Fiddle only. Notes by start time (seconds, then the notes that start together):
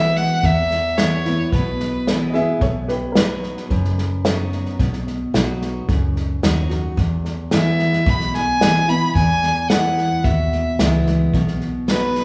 Already playing: E5
0.17 F#5
0.45 E5
0.98 C#5
1.52 B4
7.55 E5
8.09 B5
8.36 G#5
8.89 B5
9.15 G#5
9.69 F#5
10.24 E5
11.88 B4